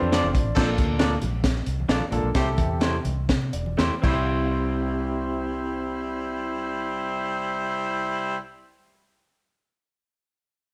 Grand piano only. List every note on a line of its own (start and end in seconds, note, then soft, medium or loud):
0.00 0.35 C4 loud
0.00 0.36 D4 medium
0.00 0.36 F4 medium
0.00 0.36 A4 medium
0.00 0.39 C5 loud
0.14 0.34 A5 medium
0.34 0.76 D5 medium
0.55 1.18 A#2 medium
0.55 1.16 A#3 medium
0.55 1.16 D4 medium
0.55 1.16 F4 medium
0.55 1.16 A4 loud
2.11 2.27 A#3 medium
2.11 2.27 D4 medium
2.11 2.27 F4 medium
2.11 2.28 A4 loud
2.34 3.01 C3 medium
2.34 2.98 C4 medium
2.34 2.99 E4 medium
2.34 2.99 G4 medium
2.34 2.99 A4 loud
3.53 3.77 D5 medium
3.79 4.03 C5 medium
4.00 8.37 C2 medium
4.00 8.33 C4 medium
4.00 8.36 E4 medium
4.04 8.38 G4 medium
4.04 8.41 C5 medium